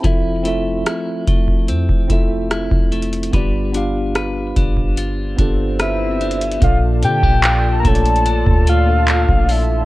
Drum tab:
HH |x---x---x---x---x---x---x---xxxx|x---x---x---x---x---x---x---xxxx|x---x---x---xxxxx---x---x---o---|
CP |--------------------------------|--------------------------------|--------x---------------x-------|
SD |--------r---------------r-------|--------r---------------r-------|--------------------------------|
BD |o-----------o-o---o-o-----o-----|o-----------o-o-----o-----------|o-----o-----o-----o-------o-----|